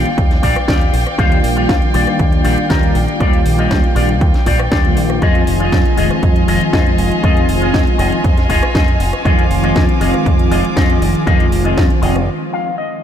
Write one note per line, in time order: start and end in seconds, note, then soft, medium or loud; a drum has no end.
0.00 0.10 A#3 medium
0.00 0.10 D4 medium
0.00 0.10 F4 medium
0.00 5.18 D5 medium
0.00 5.18 F5 medium
0.00 5.18 G5 medium
0.06 closed hi-hat soft
0.17 0.38 D#2 medium
0.17 muted clean electric guitar stroke soft
0.17 kick loud
0.17 closed hi-hat medium
0.31 snare soft
0.31 closed hi-hat soft
0.42 0.54 A#1 medium
0.42 0.56 F4 loud
0.42 0.56 G4 loud
0.42 0.56 D5 loud
0.42 kick medium
0.42 open hi-hat loud
0.56 muted fingered electric bass stroke soft
0.56 cross-stick medium
0.68 0.89 D#2 medium
0.68 0.93 F4 medium
0.68 0.94 G4 medium
0.68 0.94 D5 medium
0.68 kick loud
0.68 snare loud
0.68 closed hi-hat medium
0.81 closed hi-hat soft
0.93 1.04 A#1 medium
0.93 open hi-hat loud
1.07 cross-stick medium
1.07 closed hi-hat soft
1.18 1.39 D#2 medium
1.18 1.91 D#3 medium
1.18 1.91 G3 medium
1.18 1.91 A#3 medium
1.18 1.92 D4 medium
1.18 1.37 F4 loud
1.18 1.92 F4 loud
1.18 1.38 G4 loud
1.18 1.38 F5 loud
1.18 kick loud
1.18 closed hi-hat medium
1.32 closed hi-hat soft
1.44 1.65 A#1 medium
1.44 open hi-hat loud
1.56 1.75 F4 medium
1.56 1.76 G4 medium
1.56 1.76 F5 loud
1.56 closed hi-hat soft
1.69 1.80 D#2 medium
1.69 kick loud
1.69 snare loud
1.69 closed hi-hat medium
1.82 closed hi-hat soft
1.93 2.05 A#1 medium
1.93 3.17 D#3 medium
1.93 3.17 G3 medium
1.93 3.17 A#3 medium
1.93 3.18 D4 medium
1.93 2.07 F4 medium
1.93 3.18 F4 loud
1.93 2.07 G4 medium
1.93 2.08 D5 loud
1.93 open hi-hat loud
2.07 cross-stick medium
2.19 2.40 D#2 medium
2.19 muted clean electric guitar stroke soft
2.19 kick loud
2.19 closed hi-hat medium
2.32 closed hi-hat soft
2.44 2.55 A#1 medium
2.44 2.57 F4 loud
2.44 2.58 G4 loud
2.44 2.58 D5 loud
2.44 open hi-hat loud
2.58 muted fingered electric bass stroke soft
2.69 2.91 D#2 medium
2.69 2.95 F4 medium
2.69 2.95 G4 medium
2.69 2.96 A#4 medium
2.69 kick loud
2.69 snare loud
2.69 closed hi-hat medium
2.83 closed hi-hat soft
2.95 3.06 A#1 medium
2.95 open hi-hat loud
3.08 closed hi-hat soft
3.19 3.41 D#2 medium
3.19 3.92 D#3 medium
3.19 3.93 G3 medium
3.19 3.93 A#3 medium
3.19 3.39 F4 loud
3.19 3.93 F4 loud
3.19 3.40 G4 medium
3.19 3.40 D5 loud
3.19 kick loud
3.19 closed hi-hat medium
3.33 closed hi-hat soft
3.45 3.66 A#1 medium
3.45 open hi-hat loud
3.58 3.77 F4 medium
3.58 3.77 G4 medium
3.58 3.78 D#5 medium
3.71 3.81 D#2 medium
3.71 kick loud
3.71 snare loud
3.71 closed hi-hat medium
3.84 closed hi-hat soft
3.95 4.21 A#1 loud
3.95 4.13 D#3 medium
3.95 4.13 G3 medium
3.95 4.13 A#3 medium
3.95 4.14 D4 medium
3.95 4.09 F4 medium
3.95 4.14 F4 medium
3.95 4.09 G4 medium
3.95 4.09 D5 loud
3.95 open hi-hat loud
4.09 closed hi-hat soft
4.21 4.32 D#2 medium
4.21 muted clean electric guitar stroke soft
4.21 kick loud
4.21 closed hi-hat medium
4.34 snare soft
4.34 closed hi-hat soft
4.46 4.67 A#1 medium
4.46 4.59 F4 loud
4.46 4.60 G4 medium
4.46 4.60 D5 loud
4.46 kick medium
4.46 open hi-hat loud
4.60 cross-stick medium
4.71 4.97 D#2 medium
4.71 4.97 F4 medium
4.71 4.97 G4 medium
4.71 4.97 D5 medium
4.71 kick loud
4.71 snare loud
4.71 closed hi-hat medium
4.84 5.19 D#3 medium
4.84 5.19 G3 medium
4.84 5.19 A#3 medium
4.84 5.19 D4 medium
4.84 5.19 F4 medium
4.84 closed hi-hat soft
4.97 5.18 A#1 medium
4.97 open hi-hat loud
5.10 cross-stick medium
5.10 closed hi-hat soft
5.21 5.43 F2 medium
5.21 5.94 D#3 medium
5.21 5.95 F3 medium
5.21 5.95 G#3 medium
5.21 5.95 C4 medium
5.21 5.41 F4 loud
5.21 12.24 F4 medium
5.21 5.95 F4 loud
5.21 5.41 G#4 medium
5.21 9.22 D#5 medium
5.21 5.42 D#5 loud
5.21 12.24 G#5 medium
5.21 kick loud
5.21 closed hi-hat medium
5.35 closed hi-hat soft
5.47 5.68 F1 medium
5.47 open hi-hat loud
5.60 5.79 F4 medium
5.60 5.79 G#4 medium
5.60 5.79 D#5 medium
5.60 closed hi-hat soft
5.72 5.83 F2 medium
5.72 kick loud
5.72 snare loud
5.72 closed hi-hat medium
5.85 closed hi-hat soft
5.97 6.08 F1 medium
5.97 7.20 D#3 medium
5.97 7.21 F3 medium
5.97 7.21 G#3 medium
5.97 7.21 C4 medium
5.97 6.10 F4 medium
5.97 7.21 F4 loud
5.97 6.11 G#4 medium
5.97 6.11 D#5 medium
5.97 open hi-hat loud
6.11 cross-stick medium
6.22 6.43 F2 medium
6.22 muted clean electric guitar stroke soft
6.22 kick loud
6.22 closed hi-hat medium
6.36 closed hi-hat soft
6.47 6.59 F1 medium
6.47 6.61 F4 loud
6.47 6.61 G#4 loud
6.47 6.61 D#5 loud
6.47 open hi-hat loud
6.61 muted fingered electric bass stroke soft
6.73 6.94 F2 medium
6.73 6.98 F4 medium
6.73 6.99 G#4 medium
6.73 6.99 D#5 medium
6.73 kick loud
6.73 snare loud
6.73 closed hi-hat medium
6.86 closed hi-hat soft
6.98 7.09 F1 medium
6.98 open hi-hat loud
7.11 closed hi-hat soft
7.23 7.44 F2 loud
7.23 7.96 D#3 medium
7.23 7.96 F3 medium
7.23 7.96 G#3 medium
7.23 7.97 C4 medium
7.23 7.43 F4 loud
7.23 7.97 F4 loud
7.23 7.43 G#4 medium
7.23 7.43 D#5 loud
7.23 kick loud
7.23 closed hi-hat medium
7.37 closed hi-hat soft
7.49 7.69 F1 medium
7.49 open hi-hat loud
7.61 7.80 F4 medium
7.61 7.81 G#4 medium
7.61 7.81 D#5 loud
7.61 closed hi-hat soft
7.74 7.85 F2 medium
7.74 kick loud
7.74 snare loud
7.74 closed hi-hat medium
7.87 closed hi-hat soft
7.98 8.10 F1 medium
7.98 8.16 D#3 medium
7.98 8.17 F3 medium
7.98 8.17 G#3 medium
7.98 8.17 C4 medium
7.98 8.12 F4 medium
7.98 8.17 F4 medium
7.98 8.12 G#4 medium
7.98 8.13 D#5 loud
7.98 open hi-hat loud
8.12 closed hi-hat soft
8.24 8.45 F2 medium
8.24 muted clean electric guitar stroke soft
8.24 kick loud
8.24 closed hi-hat medium
8.37 snare soft
8.37 closed hi-hat soft
8.49 8.60 F1 medium
8.49 8.62 F4 loud
8.49 8.63 G#4 loud
8.49 8.63 D#5 loud
8.49 kick medium
8.49 open hi-hat medium
8.63 muted fingered electric bass stroke soft
8.63 cross-stick medium
8.63 closed hi-hat soft
8.74 8.96 F2 medium
8.74 9.00 F4 medium
8.74 9.00 G#4 medium
8.74 9.01 D#5 medium
8.74 kick loud
8.74 snare loud
8.74 closed hi-hat medium
8.88 closed hi-hat soft
9.00 9.11 F1 medium
9.00 open hi-hat loud
9.13 cross-stick medium
9.24 9.46 F2 medium
9.24 9.97 D#3 medium
9.24 9.98 F3 medium
9.24 9.98 G#3 medium
9.24 9.98 C4 medium
9.24 9.44 F4 loud
9.24 9.98 F4 loud
9.24 9.44 G#4 loud
9.24 9.45 D#5 loud
9.24 12.25 D6 medium
9.24 kick loud
9.24 closed hi-hat medium
9.39 closed hi-hat soft
9.50 9.71 F1 medium
9.50 open hi-hat loud
9.63 9.82 F4 medium
9.63 9.82 G#4 medium
9.63 9.83 D#5 loud
9.76 9.86 F2 medium
9.76 kick loud
9.76 snare loud
9.76 closed hi-hat medium
9.89 closed hi-hat soft
10.00 10.11 F1 loud
10.00 11.24 D#3 medium
10.00 11.24 F3 medium
10.00 11.24 G#3 medium
10.00 11.24 C4 medium
10.00 10.14 F4 medium
10.00 11.25 F4 loud
10.00 10.14 G#4 medium
10.00 10.14 D#5 loud
10.00 open hi-hat loud
10.14 cross-stick medium
10.14 closed hi-hat soft
10.25 10.47 F2 medium
10.25 muted clean electric guitar stroke soft
10.25 kick loud
10.25 closed hi-hat medium
10.39 closed hi-hat soft
10.50 10.62 F1 medium
10.50 10.64 F4 loud
10.50 10.64 G#4 medium
10.50 10.65 D#5 loud
10.50 open hi-hat medium
10.64 muted fingered electric bass stroke soft
10.64 closed hi-hat soft
10.76 10.97 F2 medium
10.76 11.01 F4 medium
10.76 11.02 G#4 medium
10.76 11.02 D#5 medium
10.76 kick loud
10.76 snare loud
10.76 closed hi-hat medium
10.90 closed hi-hat soft
11.02 11.12 F1 medium
11.02 open hi-hat loud
11.15 closed hi-hat soft
11.26 11.48 F2 medium
11.26 11.99 D#3 medium
11.26 12.00 F3 medium
11.26 12.00 G#3 medium
11.26 12.00 C4 medium
11.26 11.46 F4 loud
11.26 12.00 F4 loud
11.26 11.46 G#4 medium
11.26 11.46 D#5 loud
11.26 kick loud
11.26 closed hi-hat medium
11.40 closed hi-hat soft
11.52 11.73 F1 medium
11.52 open hi-hat loud
11.64 11.84 F4 medium
11.64 11.84 G#4 medium
11.64 11.84 D#5 loud
11.64 closed hi-hat soft
11.77 11.88 F2 medium
11.77 kick loud
11.77 snare loud
11.77 closed hi-hat medium
11.90 closed hi-hat soft
12.02 12.28 F1 medium
12.02 12.20 D#3 medium
12.02 12.20 F3 medium
12.02 12.20 G#3 medium
12.02 12.20 C4 medium
12.02 12.15 F4 medium
12.02 12.20 F4 medium
12.02 12.16 G#4 medium
12.02 12.16 D#5 loud
12.02 open hi-hat loud
12.16 cross-stick medium
12.16 closed hi-hat soft
12.53 12.77 F5 medium
12.78 13.03 D#5 medium